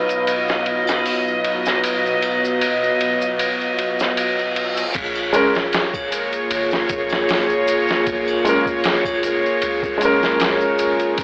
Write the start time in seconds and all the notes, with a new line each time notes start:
Already playing: B2 F#3 B3 D#4 F4 B4 D#5 F5
0.09 ride, maracas
0.27 ride, maracas
0.48 snare, maracas
0.66 ride
0.87 snare, triangle, maracas
1.06 open hi-hat, maracas
1.28 maracas
1.44 ride
1.66 snare, maracas
1.84 ride, maracas
2.06 maracas
2.22 ride, triangle
2.45 maracas
2.61 ride, maracas
2.84 maracas
3.01 ride
3.22 maracas
3.39 ride, reverse cymbal, maracas
3.61 maracas
3.79 ride
3.99 snare, maracas
4.17 ride, maracas
4.39 maracas
4.56 ride
4.77 ride, maracas
4.94 A#1 A#3 F4 G#4 C#5, kick, crash, ride, maracas
5.15 triangle, maracas
5.33 G#3 C#4 A#4, ride, maracas
5.55 snare, maracas
5.73 snare, ride, maracas
5.94 kick, triangle, maracas
6.12 ride, maracas
6.33 ride, maracas
6.51 G#1, ride, maracas
6.71 snare, maracas
6.89 A#1, kick, ride, maracas
7.09 snare, triangle, maracas
7.28 snare, open hi-hat, maracas
7.49 maracas
7.68 ride, maracas
7.88 snare, maracas
8.07 A#1, kick, ride, maracas
8.28 triangle, maracas
8.45 G#3 C#4, ride, maracas
8.49 A#4
8.66 kick, maracas
8.84 snare, ride, maracas
9.05 kick, triangle, maracas
9.23 F1, ride, maracas
9.46 maracas
9.62 C#2, ride, maracas
9.83 kick, maracas
9.98 G#3, ride
10.02 C#4 A#4, maracas
10.23 snare, maracas
10.40 snare, ride, maracas
10.61 maracas
10.79 ride, maracas
11.00 ride, maracas
11.17 B1 D#4 F#4 B4, kick, ride, maracas